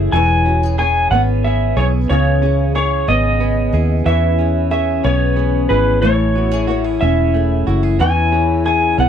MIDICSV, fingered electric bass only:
0, 0, Header, 1, 2, 480
1, 0, Start_track
1, 0, Key_signature, 4, "major"
1, 0, Tempo, 655738
1, 93, Time_signature, 6, 3, 24, 8
1, 6653, End_track
2, 0, Start_track
2, 0, Title_t, "Fingered electric bass"
2, 0, Program_c, 0, 33
2, 0, Note_on_c, 0, 30, 92
2, 78, Note_off_c, 0, 30, 0
2, 95, Note_on_c, 0, 28, 103
2, 784, Note_off_c, 0, 28, 0
2, 815, Note_on_c, 0, 32, 108
2, 1264, Note_off_c, 0, 32, 0
2, 1293, Note_on_c, 0, 35, 98
2, 1518, Note_off_c, 0, 35, 0
2, 1539, Note_on_c, 0, 37, 101
2, 2225, Note_off_c, 0, 37, 0
2, 2255, Note_on_c, 0, 32, 89
2, 2704, Note_off_c, 0, 32, 0
2, 2733, Note_on_c, 0, 39, 95
2, 2957, Note_off_c, 0, 39, 0
2, 2971, Note_on_c, 0, 40, 104
2, 3662, Note_off_c, 0, 40, 0
2, 3693, Note_on_c, 0, 35, 105
2, 4144, Note_off_c, 0, 35, 0
2, 4175, Note_on_c, 0, 32, 96
2, 4399, Note_off_c, 0, 32, 0
2, 4416, Note_on_c, 0, 33, 102
2, 5105, Note_off_c, 0, 33, 0
2, 5140, Note_on_c, 0, 28, 100
2, 5589, Note_off_c, 0, 28, 0
2, 5618, Note_on_c, 0, 30, 99
2, 5842, Note_off_c, 0, 30, 0
2, 5857, Note_on_c, 0, 40, 102
2, 6548, Note_off_c, 0, 40, 0
2, 6575, Note_on_c, 0, 35, 99
2, 6653, Note_off_c, 0, 35, 0
2, 6653, End_track
0, 0, End_of_file